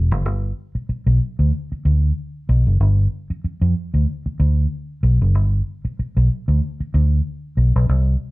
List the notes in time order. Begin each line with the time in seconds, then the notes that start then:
Already playing: E1
0.12 F#1
0.25 G1
0.75 muted fingered electric bass stroke
0.89 muted fingered electric bass stroke
1.06 B1
1.39 D2
1.72 muted fingered electric bass stroke
1.85 D2
2.49 B1
2.67 F#1
2.80 G1
3.30 muted fingered electric bass stroke
3.44 muted fingered electric bass stroke
3.61 F2
3.94 D2
4.26 muted fingered electric bass stroke
4.40 D2
5.03 B1
5.22 F#1
5.35 G1
5.85 muted fingered electric bass stroke
5.99 muted fingered electric bass stroke
6.17 B1
6.48 D2
6.80 muted fingered electric bass stroke
6.94 D2
7.57 B1
7.76 B1
7.89 C2